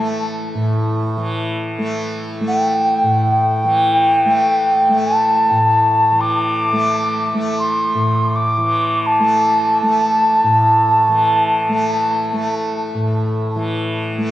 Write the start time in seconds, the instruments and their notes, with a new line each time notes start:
Already playing: tanpura A2 E3 A3
0.55 tanpura A2
1.17 tanpura E3
1.78 tanpura A3
2.41 tanpura A3
2.48 ocarina G5
3.03 tanpura A2
3.64 tanpura E3
4.26 tanpura A3
4.89 tanpura A3
5.06 ocarina A5
5.51 tanpura A2
6.12 tanpura E3
6.21 ocarina D6
6.73 tanpura A3
7.34 tanpura A3
7.59 ocarina C6
7.95 tanpura A2
8.36 ocarina D6
8.58 tanpura E3
9.06 ocarina A5
9.20 tanpura A3
9.83 tanpura A3
10.44 tanpura A2
11.09 tanpura E3
11.69 tanpura A3
12.33 tanpura A3
12.95 tanpura A2
13.56 tanpura E3
14.18 tanpura A3